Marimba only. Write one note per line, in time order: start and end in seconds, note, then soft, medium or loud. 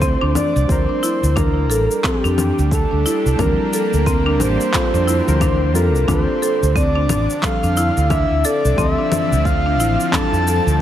0.02 0.20 C4 loud
0.21 0.34 D4 loud
0.35 0.69 D4 medium
0.89 1.02 D4 medium
1.03 1.22 E4 loud
1.36 1.69 D4 medium
1.70 1.89 A4 loud
2.04 2.22 C4 loud
2.24 2.37 D4 loud
2.38 2.90 D4 medium
2.91 3.05 D4 medium
3.06 3.25 E4 loud
3.39 3.71 D4 medium
3.73 3.92 A4 medium
4.07 4.25 C4 loud
4.26 4.39 D4 loud
4.40 4.92 D4 medium
4.94 5.07 D4 medium
5.07 5.26 E4 loud
5.41 5.74 D4 loud
5.75 5.94 A4 loud
6.08 6.41 D4 loud
6.42 6.61 A4 loud
6.76 6.94 C4 loud
6.95 7.09 D4 loud
7.10 7.61 D4 medium
7.63 7.77 D4 medium
7.77 7.96 E4 loud
8.11 8.43 D4 loud
8.45 8.64 A4 loud
8.78 8.96 C4 loud
8.98 9.11 D4 medium
9.12 9.64 D4 medium
9.66 9.79 D4 medium
9.80 9.99 E4 loud
10.14 10.46 D4 loud
10.48 10.66 A4 loud